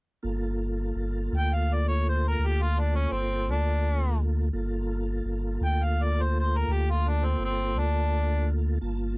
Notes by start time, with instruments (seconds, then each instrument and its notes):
0.23 sub bass G1, tonewheel organ A#3 F4 A4
0.96 sub bass G1
1.32 sub bass D2
1.38 harmonica G5
1.54 harmonica F5
1.73 harmonica D5
1.89 harmonica C#5
2.09 harmonica C5
2.28 harmonica A#4
2.39 sub bass D2
2.46 harmonica G4
2.62 harmonica F4
2.79 harmonica D4
2.96 harmonica C#4
3.12 sub bass G1, harmonica C4
3.47 sub bass D2
3.51 harmonica D4
4.53 sub bass G1, tonewheel organ A#3 F4 A4
5.25 sub bass G1
5.61 sub bass D2
5.65 harmonica G5
5.84 harmonica F5
6.03 harmonica D5
6.22 harmonica C5
6.40 harmonica C5
6.57 harmonica A#4
6.68 sub bass D2
6.72 harmonica G4
6.90 harmonica F4
7.09 harmonica D4
7.25 harmonica C4
7.39 sub bass G1
7.44 harmonica C4
7.74 sub bass D2
7.78 harmonica D4
8.81 sub bass G1, tonewheel organ A#3 F4 A5